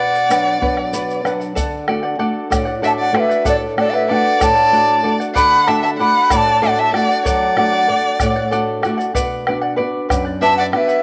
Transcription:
Already playing: B2 D5 F#5
0.00 B4 D5 F#5
0.15 D5 F#5, bombo rim, shaker
0.29 F#3 B3 D4 B4 D5 F#5, bombo rim, shaker
0.47 bombo rim
0.61 F#3 B3 D4 B4 D5 F#5, bombo rim, bombo low
0.77 D5 F#5, bombo rim
0.93 B4 D5 F#5, shaker
1.10 shaker
1.24 F#3 B3 D4 B4 D5 F#5, bombo rim, shaker
1.40 D5 F#5, shaker
1.55 D3 A4 D5 F#5, bombo rim, bombo low, shaker
1.88 A3 D4 F#4 A4 D5 F#5, bombo rim
2.03 D5 F#5
2.19 A3 D4 F#4 A4 D5 F#5, bombo rim
2.50 A2 A4 D5 F#5, bombo rim, bombo low, shaker
2.65 D5 F#5
2.82 A3 D4 F#4 A4 D5 E5 F#5, bombo rim, shaker
2.87 A5
2.99 D5 F#5
3.13 A3 D4 F#4 A4 B4 D5 F#5, bombo rim
3.20 E5
3.29 D5 F#5, shaker
3.45 A2 A4 D5 F#5, bombo rim, bombo low, shaker
3.49 D5
3.77 A3 D4 F#4 A4 D5 F#5, bombo rim
3.90 B4 D5 F#5
3.94 D5 E5
4.09 A3 D4 F#4 A4 D5 F#5 G5, bombo rim
4.16 F#5
4.40 A2 A4 D5 F#5 A5, bombo rim, bombo low, shaker
4.55 D5 F#5
4.72 A3 D4 F#4 A4 D5 F#5, shaker
5.04 A3 D4 F#4 A4 D5 F#5
5.20 D5 F#5, shaker
5.35 D3 A4 D5 F#5 B5, bombo rim, bombo low, shaker
5.67 A3 D4 F#4 A4 D5 E5 F#5 A5, bombo rim
5.83 D5 E5 F#5 A5
5.98 A3 D4 F#4 A4 D5 F#5 B5, bombo rim
6.30 A2 A4 D5 F#5 B5, bombo rim, bombo low, shaker
6.37 A5
6.47 D5 F#5
6.62 A3 D4 F#4 A4 D5 F#5, bombo rim, shaker
6.79 E5 A5
6.93 A3 D4 F#4 A4 D5 F#5, bombo rim
7.09 D5 F#5, shaker
7.25 F#3 A4 D5 F#5, bombo low, shaker
7.56 A3 D4 F#4 A4 D5 F#5, bombo rim
7.72 D5 F#5
7.88 A3 D4 F#4 A4 D5 F#5
8.20 A2 A4 D5 F#5, bombo rim, bombo low, shaker
8.36 D5 F#5
8.51 A3 D4 F#4 A4 D5 F#5, shaker
8.83 A3 D4 F#4 A4 D5 F#5, bombo rim, shaker
8.98 D5 F#5, shaker
9.15 B2 B4 D5 F#5, bombo rim, bombo low, shaker
9.47 B3 D4 F#4 B4 D5 F#5, bombo rim
9.62 D5 F#5
9.76 B3 D4 F#4 B4 D5 F#5, bombo rim
10.09 F#2 B4 D5 F#5, bombo rim, bombo low, shaker
10.25 D5 F#5
10.41 B3 D4 F#4 B4 D5 E5 F#5 A5, bombo rim, shaker
10.57 D5 F#5
10.72 B3 D4 F#4 B4 D5 F#5, bombo rim
10.77 E5
10.88 D5 F#5, shaker

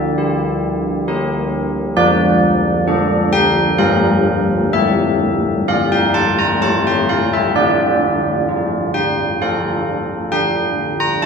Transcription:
Already playing: D3 E5
0.18 G4
1.08 G4 A#4
1.97 F3 D5
2.88 D4 A4
3.33 G5
3.78 G3 D4 A#4 F5
4.73 A3 E5
5.68 D4 D5 F5
5.92 G5
6.14 A5
6.39 A#5
6.61 A3 E4 C#5 A5
6.87 G5
7.09 F5
7.33 E5
7.56 D4 D5
8.49 F4
8.94 G5
9.42 F4 A4 F5
10.32 D4 G5
11.00 A#5
11.22 A5

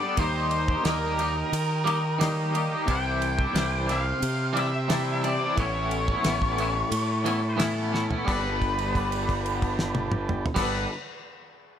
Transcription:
Already playing: G3 D5 G5 A5 B5
0.00 B3 D4 A4
0.16 D#2 D#3 G3 A#3 D#4 G4 C5 D#5 A#5 D#6, kick, ride
0.34 A#3 D#4 G4
0.51 ride
0.68 A#3 D#4 G4, kick
0.84 D#2 D#3 G3 A#3 D#4 G4 A#4, snare, ride
1.17 G3 A#3 D#4 G4, ride
1.35 muted clean electric guitar stroke
1.52 D#3, ride
1.84 G3 A#3 D#4 G4, ride
2.02 muted clean electric guitar stroke
2.19 D#3 G3 A#3 D#4 G4, snare, ride
2.52 G3 A#3 D#4 G4, ride
2.70 A#3 D#4 G4
2.86 C2 C3 E3 G3 D4 E4 C6 D6, kick, ride
2.91 G5
3.04 G3 D4 E4
3.22 ride
3.37 G3 D4 E4, kick
3.53 C2 C3 E3 G3 D4 E4, snare, ride
3.86 E3 G3 D4 E4, snare, ride
3.92 F5
4.04 muted clean electric guitar stroke
4.22 C3, ride
4.53 E3 G3 D4 E4, ride
4.59 E5
4.72 muted clean electric guitar stroke
4.88 C3 E3 G3 D4 E4, snare, ride
5.22 E3 G3 D4 E4 D5, ride
5.39 G3 D4 E4
5.56 A1 A2 E3 B3 C#4 E4 A5 C#6, kick, ride
5.60 C#5 B5
5.73 B3 C#4 E4
5.91 ride
6.07 B3 C#4 E4, kick
6.23 A1 A2 E3 B3 C#4 E4, snare, ride
6.42 kick
6.58 E3 B3 C#4 E4, ride
6.75 muted clean electric guitar stroke
6.91 A2, ride
7.24 E3 B3 C#4 E4, ride
7.42 muted clean electric guitar stroke
7.56 A2 E3 B3 C#4 E4, snare, ride
7.91 E3 B3 C#4 E4, snare
8.09 B3 C#4 E4, floor tom
8.25 G1 G3 B3 D4 A4 B4, kick, crash
8.29 B4 D5 G5 A5
8.62 kick, crash
8.79 crash
8.95 kick, crash
9.12 crash
9.29 kick, crash
9.46 crash
9.62 kick, crash
9.79 snare
9.95 high tom
10.12 mid tom
10.29 mid tom
10.46 floor tom
10.54 G1 G3 B3 D4 A4 B4, kick, snare, crash
10.59 B4 D5 G5 A5

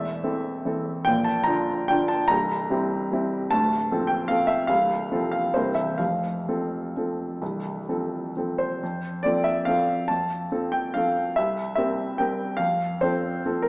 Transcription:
Already playing: E1 E2 E5
0.24 E3 C4 A4
0.65 E3 C4 A4
1.05 A#1 A#2 G5
1.24 A5
1.44 D3 D4 F4 A#5
1.88 D3 D4 F4 G5
2.08 A5
2.28 C1 C2 A#5
2.70 G3 C4 E4
3.12 G3 C4 E4
3.51 D1 D2 A5
3.91 F3 C4 A4
4.07 G5
4.28 F3 C4 A4 F5
4.47 E5
4.67 C1 C2 F5
5.11 F3 C4 A4
5.32 F5
5.54 C1 C2 E3 C4 A#4 C5
5.75 E5
5.98 F1 F2 F5
6.48 F3 C4 A4
6.97 F3 C4 A4
7.41 C1 C2
7.89 F3 C4 A4
8.37 F3 C4 A4
8.58 C5
8.83 F2
9.23 F3 C4 A4 D5
9.44 E5
9.65 F3 C4 A4 F5
10.08 F2 A5
10.52 F3 C4 A4
10.72 G5
10.94 F3 C4 A4 F5
11.36 C2 E5
11.75 G3 C4 A#4 E5
12.18 G3 C4 A#4 G5
12.57 F2 F5
13.01 F3 C4 A4 C5
13.45 F3 C4 A4
13.62 A#4

